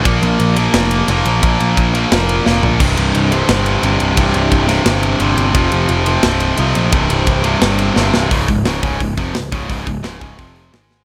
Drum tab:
CC |--------|--------|x-------|--------|
RD |xxxxxxxx|xxxxxx--|-xxxxxxx|xxxxxxxx|
HH |--------|--------|--------|--------|
SD |----o---|----o-o-|----o---|---oo---|
FT |--------|-------o|--------|--------|
BD |o-------|o-o-----|o-------|o-o-----|

CC |--------|--------|--------|--------|
RD |xxxxxxxx|xxxxxx--|--------|--------|
HH |--------|--------|oooooooo|ooooooo-|
SD |----o---|----o-oo|--o---o-|--o---oo|
FT |--------|--------|--------|--------|
BD |o-------|o-o-----|oo-ooo-o|oo-oo---|